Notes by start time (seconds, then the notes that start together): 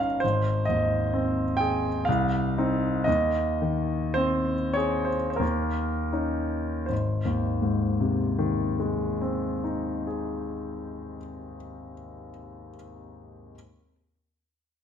Already playing: G1 G2 C#4 D#4 A#4 G5 G#5 A#5 C6 C#6
0.00 F5
0.20 G#1 C5
0.65 D#2 D#5
1.14 C4
1.57 G#4 G5
2.05 C2 F5
2.58 C4 D#4
3.04 D#2 D#5
3.62 D#3
4.14 C4 C5
4.74 G#4 C#5
5.05 C5
5.30 C5
5.36 D#2 A#4
6.13 C#4 D#4
6.86 G#1 C5
7.25 D#2
7.62 G#2
8.00 C3
8.39 D#3
8.80 G#3
9.22 C4
9.64 D#4
10.07 G#4